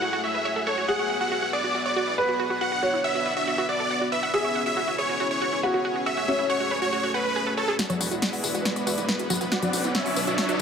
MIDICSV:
0, 0, Header, 1, 8, 480
1, 0, Start_track
1, 0, Tempo, 431655
1, 983, Time_signature, 4, 2, 24, 8
1, 11804, End_track
2, 0, Start_track
2, 0, Title_t, "Supersaw synth"
2, 0, Program_c, 0, 81
2, 0, Note_on_c, 0, 78, 91
2, 226, Note_off_c, 0, 78, 0
2, 262, Note_on_c, 0, 76, 93
2, 693, Note_off_c, 0, 76, 0
2, 742, Note_on_c, 0, 73, 82
2, 957, Note_off_c, 0, 73, 0
2, 982, Note_on_c, 0, 78, 98
2, 1305, Note_off_c, 0, 78, 0
2, 1343, Note_on_c, 0, 78, 90
2, 1666, Note_off_c, 0, 78, 0
2, 1703, Note_on_c, 0, 74, 98
2, 2026, Note_off_c, 0, 74, 0
2, 2063, Note_on_c, 0, 74, 96
2, 2386, Note_off_c, 0, 74, 0
2, 2903, Note_on_c, 0, 78, 90
2, 3333, Note_off_c, 0, 78, 0
2, 3382, Note_on_c, 0, 76, 99
2, 3705, Note_off_c, 0, 76, 0
2, 3742, Note_on_c, 0, 76, 93
2, 4065, Note_off_c, 0, 76, 0
2, 4101, Note_on_c, 0, 74, 99
2, 4533, Note_off_c, 0, 74, 0
2, 4582, Note_on_c, 0, 76, 87
2, 4797, Note_off_c, 0, 76, 0
2, 4822, Note_on_c, 0, 76, 101
2, 5145, Note_off_c, 0, 76, 0
2, 5181, Note_on_c, 0, 76, 91
2, 5505, Note_off_c, 0, 76, 0
2, 5541, Note_on_c, 0, 73, 96
2, 5865, Note_off_c, 0, 73, 0
2, 5902, Note_on_c, 0, 73, 94
2, 6225, Note_off_c, 0, 73, 0
2, 6742, Note_on_c, 0, 76, 97
2, 7173, Note_off_c, 0, 76, 0
2, 7223, Note_on_c, 0, 73, 96
2, 7546, Note_off_c, 0, 73, 0
2, 7582, Note_on_c, 0, 73, 96
2, 7905, Note_off_c, 0, 73, 0
2, 7943, Note_on_c, 0, 71, 100
2, 8373, Note_off_c, 0, 71, 0
2, 8423, Note_on_c, 0, 69, 90
2, 8638, Note_off_c, 0, 69, 0
2, 8662, Note_on_c, 0, 74, 77
2, 8662, Note_on_c, 0, 78, 94
2, 8985, Note_off_c, 0, 74, 0
2, 8985, Note_off_c, 0, 78, 0
2, 9023, Note_on_c, 0, 74, 77
2, 9023, Note_on_c, 0, 78, 94
2, 9345, Note_off_c, 0, 74, 0
2, 9346, Note_off_c, 0, 78, 0
2, 9383, Note_on_c, 0, 71, 80
2, 9383, Note_on_c, 0, 74, 99
2, 9705, Note_off_c, 0, 71, 0
2, 9706, Note_off_c, 0, 74, 0
2, 9742, Note_on_c, 0, 71, 81
2, 9743, Note_on_c, 0, 74, 103
2, 10065, Note_off_c, 0, 71, 0
2, 10065, Note_off_c, 0, 74, 0
2, 10583, Note_on_c, 0, 74, 81
2, 10583, Note_on_c, 0, 78, 90
2, 11013, Note_off_c, 0, 74, 0
2, 11013, Note_off_c, 0, 78, 0
2, 11061, Note_on_c, 0, 76, 93
2, 11062, Note_on_c, 0, 73, 78
2, 11385, Note_off_c, 0, 73, 0
2, 11385, Note_off_c, 0, 76, 0
2, 11423, Note_on_c, 0, 73, 78
2, 11423, Note_on_c, 0, 76, 99
2, 11745, Note_off_c, 0, 73, 0
2, 11745, Note_off_c, 0, 76, 0
2, 11804, End_track
3, 0, Start_track
3, 0, Title_t, "Felt piano"
3, 0, Program_c, 1, 0
3, 0, Note_on_c, 1, 64, 91
3, 886, Note_off_c, 1, 64, 0
3, 983, Note_on_c, 1, 68, 90
3, 1607, Note_off_c, 1, 68, 0
3, 2423, Note_on_c, 1, 71, 83
3, 3047, Note_off_c, 1, 71, 0
3, 3142, Note_on_c, 1, 73, 92
3, 4726, Note_off_c, 1, 73, 0
3, 4822, Note_on_c, 1, 68, 88
3, 5446, Note_off_c, 1, 68, 0
3, 6262, Note_on_c, 1, 66, 87
3, 6886, Note_off_c, 1, 66, 0
3, 6983, Note_on_c, 1, 61, 90
3, 8567, Note_off_c, 1, 61, 0
3, 11804, End_track
4, 0, Start_track
4, 0, Title_t, "Synth arpeggio sound"
4, 0, Program_c, 2, 84
4, 22, Note_on_c, 2, 66, 100
4, 103, Note_off_c, 2, 66, 0
4, 143, Note_on_c, 2, 66, 105
4, 223, Note_off_c, 2, 66, 0
4, 264, Note_on_c, 2, 66, 78
4, 295, Note_off_c, 2, 66, 0
4, 383, Note_on_c, 2, 71, 68
4, 437, Note_off_c, 2, 71, 0
4, 503, Note_on_c, 2, 73, 105
4, 535, Note_off_c, 2, 73, 0
4, 623, Note_on_c, 2, 69, 72
4, 677, Note_off_c, 2, 69, 0
4, 743, Note_on_c, 2, 69, 97
4, 797, Note_off_c, 2, 69, 0
4, 863, Note_on_c, 2, 66, 77
4, 917, Note_off_c, 2, 66, 0
4, 983, Note_on_c, 2, 66, 82
4, 1037, Note_off_c, 2, 66, 0
4, 1103, Note_on_c, 2, 73, 73
4, 1157, Note_off_c, 2, 73, 0
4, 1223, Note_on_c, 2, 78, 73
4, 1277, Note_off_c, 2, 78, 0
4, 1344, Note_on_c, 2, 66, 73
4, 1424, Note_off_c, 2, 66, 0
4, 1464, Note_on_c, 2, 66, 85
4, 1517, Note_off_c, 2, 66, 0
4, 1584, Note_on_c, 2, 66, 75
4, 1637, Note_off_c, 2, 66, 0
4, 1703, Note_on_c, 2, 68, 72
4, 1735, Note_off_c, 2, 68, 0
4, 1824, Note_on_c, 2, 66, 71
4, 1904, Note_off_c, 2, 66, 0
4, 1944, Note_on_c, 2, 66, 96
4, 2024, Note_off_c, 2, 66, 0
4, 2063, Note_on_c, 2, 73, 78
4, 2117, Note_off_c, 2, 73, 0
4, 2183, Note_on_c, 2, 66, 100
4, 2264, Note_off_c, 2, 66, 0
4, 2304, Note_on_c, 2, 64, 72
4, 2384, Note_off_c, 2, 64, 0
4, 2424, Note_on_c, 2, 71, 83
4, 2477, Note_off_c, 2, 71, 0
4, 2544, Note_on_c, 2, 66, 71
4, 2597, Note_off_c, 2, 66, 0
4, 2663, Note_on_c, 2, 66, 105
4, 2695, Note_off_c, 2, 66, 0
4, 2783, Note_on_c, 2, 66, 76
4, 2863, Note_off_c, 2, 66, 0
4, 2904, Note_on_c, 2, 66, 104
4, 2984, Note_off_c, 2, 66, 0
4, 3023, Note_on_c, 2, 66, 74
4, 3103, Note_off_c, 2, 66, 0
4, 3143, Note_on_c, 2, 66, 72
4, 3197, Note_off_c, 2, 66, 0
4, 3263, Note_on_c, 2, 64, 70
4, 3344, Note_off_c, 2, 64, 0
4, 3383, Note_on_c, 2, 78, 85
4, 3437, Note_off_c, 2, 78, 0
4, 3503, Note_on_c, 2, 66, 76
4, 3556, Note_off_c, 2, 66, 0
4, 3623, Note_on_c, 2, 71, 72
4, 3703, Note_off_c, 2, 71, 0
4, 3743, Note_on_c, 2, 66, 73
4, 3823, Note_off_c, 2, 66, 0
4, 3863, Note_on_c, 2, 66, 95
4, 3943, Note_off_c, 2, 66, 0
4, 3983, Note_on_c, 2, 66, 108
4, 4063, Note_off_c, 2, 66, 0
4, 4102, Note_on_c, 2, 66, 75
4, 4156, Note_off_c, 2, 66, 0
4, 4223, Note_on_c, 2, 69, 71
4, 4255, Note_off_c, 2, 69, 0
4, 4342, Note_on_c, 2, 78, 84
4, 4396, Note_off_c, 2, 78, 0
4, 4462, Note_on_c, 2, 66, 75
4, 4543, Note_off_c, 2, 66, 0
4, 4583, Note_on_c, 2, 71, 77
4, 4663, Note_off_c, 2, 71, 0
4, 4702, Note_on_c, 2, 78, 78
4, 4756, Note_off_c, 2, 78, 0
4, 4823, Note_on_c, 2, 66, 81
4, 4876, Note_off_c, 2, 66, 0
4, 4942, Note_on_c, 2, 73, 72
4, 4996, Note_off_c, 2, 73, 0
4, 5063, Note_on_c, 2, 78, 73
4, 5116, Note_off_c, 2, 78, 0
4, 5183, Note_on_c, 2, 66, 70
4, 5263, Note_off_c, 2, 66, 0
4, 5302, Note_on_c, 2, 66, 85
4, 5356, Note_off_c, 2, 66, 0
4, 5423, Note_on_c, 2, 66, 73
4, 5476, Note_off_c, 2, 66, 0
4, 5543, Note_on_c, 2, 68, 71
4, 5575, Note_off_c, 2, 68, 0
4, 5663, Note_on_c, 2, 66, 74
4, 5743, Note_off_c, 2, 66, 0
4, 5784, Note_on_c, 2, 66, 98
4, 5864, Note_off_c, 2, 66, 0
4, 5903, Note_on_c, 2, 73, 78
4, 5957, Note_off_c, 2, 73, 0
4, 6023, Note_on_c, 2, 66, 97
4, 6104, Note_off_c, 2, 66, 0
4, 6144, Note_on_c, 2, 64, 71
4, 6224, Note_off_c, 2, 64, 0
4, 6263, Note_on_c, 2, 71, 83
4, 6316, Note_off_c, 2, 71, 0
4, 6384, Note_on_c, 2, 66, 74
4, 6437, Note_off_c, 2, 66, 0
4, 6503, Note_on_c, 2, 66, 101
4, 6535, Note_off_c, 2, 66, 0
4, 6624, Note_on_c, 2, 66, 74
4, 6704, Note_off_c, 2, 66, 0
4, 6744, Note_on_c, 2, 66, 103
4, 6824, Note_off_c, 2, 66, 0
4, 6864, Note_on_c, 2, 66, 80
4, 6944, Note_off_c, 2, 66, 0
4, 6984, Note_on_c, 2, 66, 69
4, 7037, Note_off_c, 2, 66, 0
4, 7103, Note_on_c, 2, 64, 71
4, 7184, Note_off_c, 2, 64, 0
4, 7223, Note_on_c, 2, 78, 89
4, 7277, Note_off_c, 2, 78, 0
4, 7343, Note_on_c, 2, 66, 77
4, 7396, Note_off_c, 2, 66, 0
4, 7462, Note_on_c, 2, 71, 77
4, 7543, Note_off_c, 2, 71, 0
4, 7582, Note_on_c, 2, 66, 73
4, 7663, Note_off_c, 2, 66, 0
4, 7702, Note_on_c, 2, 66, 96
4, 7783, Note_off_c, 2, 66, 0
4, 7822, Note_on_c, 2, 66, 103
4, 7903, Note_off_c, 2, 66, 0
4, 7942, Note_on_c, 2, 78, 95
4, 8023, Note_off_c, 2, 78, 0
4, 8062, Note_on_c, 2, 71, 68
4, 8143, Note_off_c, 2, 71, 0
4, 8182, Note_on_c, 2, 68, 101
4, 8236, Note_off_c, 2, 68, 0
4, 8302, Note_on_c, 2, 69, 95
4, 8334, Note_off_c, 2, 69, 0
4, 8421, Note_on_c, 2, 73, 98
4, 8476, Note_off_c, 2, 73, 0
4, 8541, Note_on_c, 2, 68, 103
4, 8622, Note_off_c, 2, 68, 0
4, 8661, Note_on_c, 2, 66, 84
4, 8716, Note_off_c, 2, 66, 0
4, 8781, Note_on_c, 2, 73, 80
4, 8835, Note_off_c, 2, 73, 0
4, 8900, Note_on_c, 2, 78, 72
4, 8955, Note_off_c, 2, 78, 0
4, 9021, Note_on_c, 2, 66, 74
4, 9102, Note_off_c, 2, 66, 0
4, 9141, Note_on_c, 2, 66, 82
4, 9196, Note_off_c, 2, 66, 0
4, 9261, Note_on_c, 2, 66, 77
4, 9316, Note_off_c, 2, 66, 0
4, 9381, Note_on_c, 2, 68, 72
4, 9414, Note_off_c, 2, 68, 0
4, 9501, Note_on_c, 2, 66, 75
4, 9582, Note_off_c, 2, 66, 0
4, 9621, Note_on_c, 2, 66, 101
4, 9702, Note_off_c, 2, 66, 0
4, 9741, Note_on_c, 2, 73, 78
4, 9796, Note_off_c, 2, 73, 0
4, 9861, Note_on_c, 2, 66, 104
4, 9942, Note_off_c, 2, 66, 0
4, 9982, Note_on_c, 2, 64, 74
4, 10063, Note_off_c, 2, 64, 0
4, 10102, Note_on_c, 2, 71, 83
4, 10156, Note_off_c, 2, 71, 0
4, 10222, Note_on_c, 2, 66, 74
4, 10276, Note_off_c, 2, 66, 0
4, 10342, Note_on_c, 2, 66, 104
4, 10375, Note_off_c, 2, 66, 0
4, 10462, Note_on_c, 2, 66, 79
4, 10543, Note_off_c, 2, 66, 0
4, 10582, Note_on_c, 2, 66, 98
4, 10663, Note_off_c, 2, 66, 0
4, 10703, Note_on_c, 2, 66, 78
4, 10783, Note_off_c, 2, 66, 0
4, 10823, Note_on_c, 2, 66, 70
4, 10876, Note_off_c, 2, 66, 0
4, 10943, Note_on_c, 2, 64, 74
4, 11023, Note_off_c, 2, 64, 0
4, 11063, Note_on_c, 2, 78, 86
4, 11116, Note_off_c, 2, 78, 0
4, 11182, Note_on_c, 2, 66, 75
4, 11236, Note_off_c, 2, 66, 0
4, 11303, Note_on_c, 2, 71, 77
4, 11383, Note_off_c, 2, 71, 0
4, 11422, Note_on_c, 2, 66, 78
4, 11503, Note_off_c, 2, 66, 0
4, 11543, Note_on_c, 2, 66, 104
4, 11623, Note_off_c, 2, 66, 0
4, 11663, Note_on_c, 2, 66, 109
4, 11743, Note_off_c, 2, 66, 0
4, 11804, End_track
5, 0, Start_track
5, 0, Title_t, "Supersaw synth"
5, 0, Program_c, 3, 81
5, 0, Note_on_c, 3, 57, 82
5, 0, Note_on_c, 3, 66, 76
5, 0, Note_on_c, 3, 68, 76
5, 0, Note_on_c, 3, 73, 75
5, 0, Note_on_c, 3, 78, 91
5, 963, Note_off_c, 3, 57, 0
5, 964, Note_off_c, 3, 73, 0
5, 983, Note_on_c, 3, 59, 81
5, 983, Note_on_c, 3, 76, 76
5, 2858, Note_off_c, 3, 68, 0
5, 2884, Note_off_c, 3, 76, 0
5, 2904, Note_on_c, 3, 62, 76
5, 4778, Note_off_c, 3, 66, 0
5, 4778, Note_off_c, 3, 78, 0
5, 4804, Note_off_c, 3, 62, 0
5, 4823, Note_on_c, 3, 61, 76
5, 4824, Note_on_c, 3, 64, 72
5, 4824, Note_on_c, 3, 68, 76
5, 4824, Note_on_c, 3, 73, 91
5, 6698, Note_off_c, 3, 59, 0
5, 6724, Note_off_c, 3, 64, 0
5, 6742, Note_on_c, 3, 66, 76
5, 6743, Note_on_c, 3, 57, 82
5, 8625, Note_off_c, 3, 61, 0
5, 8625, Note_off_c, 3, 68, 0
5, 8625, Note_off_c, 3, 73, 0
5, 8643, Note_off_c, 3, 57, 0
5, 8643, Note_off_c, 3, 66, 0
5, 8662, Note_on_c, 3, 56, 86
5, 8662, Note_on_c, 3, 59, 77
5, 8662, Note_on_c, 3, 64, 74
5, 8662, Note_on_c, 3, 66, 74
5, 8662, Note_on_c, 3, 71, 92
5, 10563, Note_off_c, 3, 56, 0
5, 10563, Note_off_c, 3, 64, 0
5, 10563, Note_off_c, 3, 66, 0
5, 10583, Note_on_c, 3, 54, 85
5, 10583, Note_on_c, 3, 62, 77
5, 10583, Note_on_c, 3, 74, 94
5, 11804, Note_off_c, 3, 54, 0
5, 11804, Note_off_c, 3, 59, 0
5, 11804, Note_off_c, 3, 62, 0
5, 11804, Note_off_c, 3, 71, 0
5, 11804, Note_off_c, 3, 74, 0
5, 11804, End_track
6, 0, Start_track
6, 0, Title_t, "Analog synth bass"
6, 0, Program_c, 4, 38
6, 8902, Note_on_c, 4, 28, 91
6, 9003, Note_off_c, 4, 28, 0
6, 9023, Note_on_c, 4, 28, 81
6, 9124, Note_off_c, 4, 28, 0
6, 9382, Note_on_c, 4, 28, 93
6, 9483, Note_off_c, 4, 28, 0
6, 9503, Note_on_c, 4, 28, 78
6, 9604, Note_off_c, 4, 28, 0
6, 9862, Note_on_c, 4, 40, 95
6, 9963, Note_off_c, 4, 40, 0
6, 9983, Note_on_c, 4, 26, 83
6, 10084, Note_off_c, 4, 26, 0
6, 10223, Note_on_c, 4, 28, 74
6, 10323, Note_off_c, 4, 28, 0
6, 10343, Note_on_c, 4, 28, 97
6, 10443, Note_off_c, 4, 28, 0
6, 10463, Note_on_c, 4, 28, 85
6, 10564, Note_off_c, 4, 28, 0
6, 10823, Note_on_c, 4, 35, 96
6, 10924, Note_off_c, 4, 35, 0
6, 10943, Note_on_c, 4, 35, 78
6, 11044, Note_off_c, 4, 35, 0
6, 11302, Note_on_c, 4, 35, 89
6, 11403, Note_off_c, 4, 35, 0
6, 11422, Note_on_c, 4, 35, 83
6, 11523, Note_off_c, 4, 35, 0
6, 11804, End_track
7, 0, Start_track
7, 0, Title_t, "Riser"
7, 0, Program_c, 5, 103
7, 8662, Note_on_c, 5, 60, 74
7, 11804, Note_off_c, 5, 60, 0
7, 11804, End_track
8, 0, Start_track
8, 0, Title_t, "Drums"
8, 8662, Note_on_c, 9, 38, 49
8, 8662, Note_on_c, 9, 42, 79
8, 8662, Note_on_c, 9, 54, 41
8, 8774, Note_off_c, 9, 38, 0
8, 8774, Note_off_c, 9, 42, 0
8, 8774, Note_off_c, 9, 54, 0
8, 8783, Note_on_c, 9, 42, 52
8, 8783, Note_on_c, 9, 54, 21
8, 8783, Note_on_c, 9, 63, 74
8, 8894, Note_off_c, 9, 42, 0
8, 8894, Note_off_c, 9, 54, 0
8, 8894, Note_off_c, 9, 63, 0
8, 8903, Note_on_c, 9, 46, 96
8, 8903, Note_on_c, 9, 54, 69
8, 9014, Note_off_c, 9, 46, 0
8, 9014, Note_off_c, 9, 54, 0
8, 9023, Note_on_c, 9, 42, 51
8, 9023, Note_on_c, 9, 54, 31
8, 9134, Note_off_c, 9, 42, 0
8, 9134, Note_off_c, 9, 54, 0
8, 9143, Note_on_c, 9, 38, 53
8, 9143, Note_on_c, 9, 42, 85
8, 9143, Note_on_c, 9, 54, 44
8, 9254, Note_off_c, 9, 38, 0
8, 9254, Note_off_c, 9, 42, 0
8, 9254, Note_off_c, 9, 54, 0
8, 9263, Note_on_c, 9, 46, 59
8, 9263, Note_on_c, 9, 54, 20
8, 9374, Note_off_c, 9, 46, 0
8, 9374, Note_off_c, 9, 54, 0
8, 9383, Note_on_c, 9, 46, 96
8, 9383, Note_on_c, 9, 54, 67
8, 9494, Note_off_c, 9, 46, 0
8, 9494, Note_off_c, 9, 54, 0
8, 9503, Note_on_c, 9, 42, 52
8, 9503, Note_on_c, 9, 54, 29
8, 9614, Note_off_c, 9, 42, 0
8, 9614, Note_off_c, 9, 54, 0
8, 9623, Note_on_c, 9, 38, 53
8, 9623, Note_on_c, 9, 42, 77
8, 9623, Note_on_c, 9, 54, 40
8, 9734, Note_off_c, 9, 38, 0
8, 9734, Note_off_c, 9, 42, 0
8, 9734, Note_off_c, 9, 54, 0
8, 9743, Note_on_c, 9, 42, 53
8, 9743, Note_on_c, 9, 54, 19
8, 9854, Note_off_c, 9, 42, 0
8, 9854, Note_off_c, 9, 54, 0
8, 9862, Note_on_c, 9, 46, 97
8, 9862, Note_on_c, 9, 54, 67
8, 9974, Note_off_c, 9, 46, 0
8, 9974, Note_off_c, 9, 54, 0
8, 9983, Note_on_c, 9, 42, 55
8, 9983, Note_on_c, 9, 54, 32
8, 10094, Note_off_c, 9, 42, 0
8, 10094, Note_off_c, 9, 54, 0
8, 10103, Note_on_c, 9, 38, 54
8, 10103, Note_on_c, 9, 54, 40
8, 10214, Note_off_c, 9, 38, 0
8, 10214, Note_off_c, 9, 54, 0
8, 10223, Note_on_c, 9, 42, 50
8, 10223, Note_on_c, 9, 54, 20
8, 10334, Note_off_c, 9, 42, 0
8, 10334, Note_off_c, 9, 54, 0
8, 10343, Note_on_c, 9, 46, 96
8, 10343, Note_on_c, 9, 54, 70
8, 10343, Note_on_c, 9, 63, 73
8, 10403, Note_on_c, 9, 42, 60
8, 10454, Note_off_c, 9, 46, 0
8, 10454, Note_off_c, 9, 54, 0
8, 10454, Note_off_c, 9, 63, 0
8, 10463, Note_off_c, 9, 42, 0
8, 10463, Note_on_c, 9, 42, 49
8, 10463, Note_on_c, 9, 54, 31
8, 10574, Note_off_c, 9, 42, 0
8, 10574, Note_off_c, 9, 54, 0
8, 10583, Note_on_c, 9, 38, 57
8, 10583, Note_on_c, 9, 42, 80
8, 10583, Note_on_c, 9, 54, 38
8, 10694, Note_off_c, 9, 38, 0
8, 10694, Note_off_c, 9, 42, 0
8, 10694, Note_off_c, 9, 54, 0
8, 10703, Note_on_c, 9, 42, 55
8, 10703, Note_on_c, 9, 54, 20
8, 10703, Note_on_c, 9, 63, 72
8, 10814, Note_off_c, 9, 42, 0
8, 10814, Note_off_c, 9, 54, 0
8, 10814, Note_off_c, 9, 63, 0
8, 10823, Note_on_c, 9, 46, 108
8, 10823, Note_on_c, 9, 54, 69
8, 10934, Note_off_c, 9, 46, 0
8, 10934, Note_off_c, 9, 54, 0
8, 10943, Note_on_c, 9, 42, 52
8, 10943, Note_on_c, 9, 54, 30
8, 11054, Note_off_c, 9, 42, 0
8, 11054, Note_off_c, 9, 54, 0
8, 11062, Note_on_c, 9, 38, 63
8, 11062, Note_on_c, 9, 42, 83
8, 11062, Note_on_c, 9, 54, 42
8, 11173, Note_off_c, 9, 38, 0
8, 11173, Note_off_c, 9, 42, 0
8, 11173, Note_off_c, 9, 54, 0
8, 11182, Note_on_c, 9, 46, 61
8, 11182, Note_on_c, 9, 54, 20
8, 11294, Note_off_c, 9, 46, 0
8, 11294, Note_off_c, 9, 54, 0
8, 11302, Note_on_c, 9, 46, 103
8, 11302, Note_on_c, 9, 54, 67
8, 11413, Note_off_c, 9, 46, 0
8, 11413, Note_off_c, 9, 54, 0
8, 11422, Note_on_c, 9, 42, 53
8, 11422, Note_on_c, 9, 54, 30
8, 11533, Note_off_c, 9, 42, 0
8, 11533, Note_off_c, 9, 54, 0
8, 11542, Note_on_c, 9, 38, 67
8, 11542, Note_on_c, 9, 42, 76
8, 11542, Note_on_c, 9, 54, 40
8, 11653, Note_off_c, 9, 38, 0
8, 11653, Note_off_c, 9, 42, 0
8, 11653, Note_off_c, 9, 54, 0
8, 11662, Note_on_c, 9, 42, 51
8, 11662, Note_on_c, 9, 54, 19
8, 11773, Note_off_c, 9, 42, 0
8, 11773, Note_off_c, 9, 54, 0
8, 11804, End_track
0, 0, End_of_file